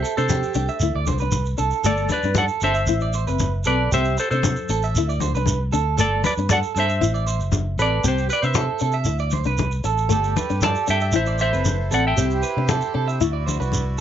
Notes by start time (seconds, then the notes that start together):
Already playing: C5 E5
0.03 A4, shekere
0.17 C3 D4 A4 C5, shekere
0.29 G4, high conga, shekere
0.43 shekere
0.54 C2 D4 G4, muted conga, shekere
0.68 E5, shekere
0.80 D2 E4, muted conga, shekere
0.95 D2 D5
1.06 C2 C5, muted conga, high conga, low conga, shekere
1.19 D4 B4, shekere
1.32 C2, high conga, shekere
1.46 shekere
1.58 C2 D4 A4, shekere
1.71 shekere
1.83 G1 A3 A4 D5, muted conga, shekere
1.97 shekere
2.09 B4 D5, high conga, shekere
2.13 B4
2.23 G2 D4, shekere
2.35 A4 F#5, high conga, shekere
2.39 D5
2.48 shekere
2.61 G1 D4 A4 C5 E5, shekere
2.74 E5, shekere
2.87 A1 E4, muted conga, shekere
3.00 D5, shekere
3.13 C5, muted conga, shekere
3.27 F#1 C4 B4, shekere
3.39 high conga, shekere
3.64 B1 C4 A4 B4 D5, shekere
3.92 C2 C4 G4 C5 E5, muted conga, shekere
4.05 shekere
4.18 A4 C5, muted clean electric guitar stroke, shekere
4.30 C3 D4 A4 C5, shekere
4.43 muted clean electric guitar stroke, high conga, shekere
4.56 shekere
4.69 A1 A4, muted steel-string acoustic guitar stroke, shekere
4.83 E5, shekere
4.94 D2 E4, muted conga, shekere
5.09 D5, shekere
5.20 C5, muted conga, high conga, shekere
5.34 C2 D4 B4, shekere
5.46 high conga, shekere
5.72 D2 D4 A4, muted conga, shekere
5.97 G1 A3 A4 D5, muted conga, shekere
6.24 B4 D5, high conga, shekere
6.37 G2 D4, shekere
6.49 A4 D5 F#5, high conga, shekere
6.63 shekere
6.75 G2 D4 A4 C5, shekere
6.80 E5
6.88 E5, shekere
7.01 A1 E4, muted conga, shekere
7.14 D5, shekere
7.26 C5, muted conga, shekere
7.39 F#1, shekere
7.52 high conga, shekere
7.78 A1 C4 A4 B4, shekere
7.82 D5
8.04 C2 C4 G4, muted conga, shekere
8.08 C5
8.18 shekere
8.29 B4 D5, shekere
8.42 C3 D4 C5 E5, shekere
8.54 A4, high conga, shekere
8.79 C3 D4 A4, shekere
8.92 E5, shekere
9.05 D2 E4, muted conga, shekere
9.18 D5, shekere
9.31 C5, muted conga, high conga, shekere
9.44 C2 D4 B4, shekere
9.58 high conga, shekere
9.72 shekere
9.84 A1 A4, muted steel-string acoustic guitar stroke, muted conga, shekere
9.98 shekere
10.09 G1 A3 G4 A4 D5, muted conga, shekere
10.24 shekere
10.37 B4, high conga, shekere
10.49 G2 D4, shekere
10.61 A4 D5 A5, high conga, shekere
10.75 shekere
10.87 G2 D4 A4 E5 G5, shekere
11.01 E5, shekere
11.12 A1 E4 C5 E5, muted conga, shekere
11.16 C5
11.26 D5, shekere
11.39 C5 E5, muted conga, shekere
11.53 F#1 C4 B4, shekere
11.65 high conga, shekere
11.91 A1 C4 A4 D5 F#5, muted conga, shekere
12.07 E5 G5
12.16 C2 C4 E4 G4 C5, muted conga, shekere
12.30 shekere
12.43 B4, shekere
12.57 C3 D4
12.68 A4, high conga, shekere
12.81 shekere
12.94 C3 D4 A4
13.08 E5, shekere
13.21 D2 E4 F#4 D5, muted conga, shekere
13.33 D5
13.46 C5, muted conga, high conga, shekere
13.60 C2 D4 B4, shekere
13.72 high conga, shekere